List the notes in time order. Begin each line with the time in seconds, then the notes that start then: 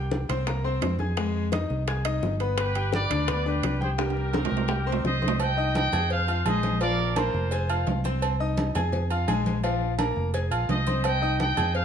Already playing: C2 G4 G5 G6
0.11 high bongo, high conga
0.29 C2 C4 C5 C6, high bongo, high conga, low conga, high timbale
0.47 A#3 A#4 A#5, high bongo, high conga, low conga, high timbale
0.64 C4 C5 C6, high bongo, high conga
0.82 F2, high bongo, low bongo, high conga, high timbale, low timbale
0.99 G#4 G#5 G#6, high bongo, high conga
1.17 G#3 G#4 G#5, high bongo, high conga, high timbale
1.34 high conga
1.52 D#4 D#5 D#6, high bongo, high conga, high timbale
1.70 C2, high bongo, high conga
1.88 G#4 G#5 G#6, high bongo, high conga, high timbale
2.05 D#4 D#5 D#6, high bongo, high conga, high timbale
2.22 G1, high bongo, low bongo, high conga
2.40 B3 B4 B5, high bongo, high timbale
2.58 G4 B4, high bongo, high conga, high timbale
2.75 G4 G5 G6, high conga, high timbale
2.93 B4 D5, high bongo, high conga
3.10 D2 D4 D5 D6, high bongo, high conga, low conga, high timbale
3.28 B3 B4 D5 B5, high bongo, high conga, low conga, high timbale
3.46 D4 G4 B4 D5 D6, high bongo, high conga
3.63 C2, high bongo, low bongo, high conga, high timbale
3.81 G4 G#4 C5 G5 G6, high bongo, high conga
3.98 G3 G4 A#4 G5, high bongo, high timbale
4.10 high timbale
4.17 high conga
4.33 C4 C5 C6, high bongo, high conga, high timbale
4.45 low timbale
4.51 C2, high bongo, high conga
4.57 low timbale
4.68 G4 G5 G6, high bongo, high conga, low timbale
4.86 C4 C5 C6, high bongo, high conga
4.92 low timbale
5.04 C2 C5 D#5, high bongo, low bongo, high conga
5.21 C4 C5 C6, high bongo, high conga
5.28 low timbale
5.40 D#5 G5, cowbell, high conga, low agogo
5.57 D#4 D#5 D#6, high conga
5.75 D#5 G5, cowbell, high conga, low agogo
5.92 F2 G#4 G#5 G#6, cowbell, high conga, low conga, low agogo
6.10 C5 F5, cowbell, high conga
6.28 F4 F5 F6, high conga, low agogo
6.45 A#1 G#3 G#4 C5 D#5 G#5, cowbell, high conga, low agogo
6.63 cowbell, high conga
6.81 F3 F4 A#4 D5 F5, cowbell, high conga, low agogo
6.99 high conga
7.16 A#3 F4 A#4 C5 A#5, cowbell, high conga, low agogo
7.34 F1, high conga
7.51 G#4 G#5 G#6, cowbell, high conga, low agogo
7.69 F4 F5 F6, high conga, low agogo
7.87 C2, cowbell, high conga, low timbale
8.04 C4 C5 C6, high conga, low agogo
8.22 cowbell, high conga, low agogo
8.40 D#4 D#5 D#6, high conga
8.57 cowbell, high conga, low agogo
8.75 F2 G#4 G#5 G#6, cowbell, high conga, low conga, low agogo
8.92 cowbell, high conga, low conga
9.10 F4 F5 F6, high conga, low agogo
9.28 A#1 G#3 G#4 G#5, cowbell, high conga, low agogo
9.46 cowbell, high conga
9.63 F3 F4 F5, cowbell, high conga, low agogo
9.81 high conga
9.99 A#3 A#4 A#5, cowbell, high conga, low agogo
10.16 F1, high conga
10.34 G#4 G#5 G#6, cowbell, high conga, low agogo
10.51 A#1 F4 F5 F6, high conga, low agogo
10.68 C2 C5 D#5, cowbell, high conga, low timbale
10.87 C4 C5 C6, high conga, low agogo
11.04 D#5 G5, cowbell, high conga, low agogo
11.22 D#4 D#5 D#6, high conga
11.40 D#5 G5, cowbell, high conga, low agogo
11.57 F2 G#4 G#5 G#6, cowbell, high conga, low conga, low agogo
11.75 C5 F5, cowbell, high conga